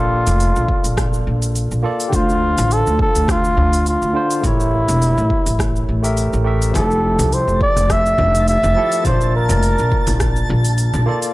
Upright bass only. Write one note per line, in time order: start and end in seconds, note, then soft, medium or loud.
0.00 0.22 A#1 medium
0.27 0.50 F1 loud
0.56 0.67 A#1 medium
0.84 1.22 A#1 medium
1.27 1.67 A#1 medium
1.71 1.82 A#1 medium
2.13 2.53 D2 medium
2.58 2.81 A1 loud
2.87 2.98 D2 medium
3.16 3.54 D2 medium
3.57 3.97 D2 medium
4.02 4.13 D2 medium
4.44 4.84 A1 loud
4.88 5.11 E1 medium
5.18 5.28 A1 medium
5.46 5.84 A1 medium
5.89 6.28 A1 medium
6.33 6.71 A1 medium
6.74 7.14 F1 medium
7.19 7.42 C2 medium
7.48 7.58 F1 medium
7.77 8.15 F1 medium
8.19 8.59 F1 medium
8.64 8.74 F1 medium
9.05 9.45 A#1 medium
9.50 9.73 F1 loud
9.79 9.90 A#1 medium
10.08 10.46 A#1 medium
10.50 10.90 A#1 medium
10.95 11.05 A#1 medium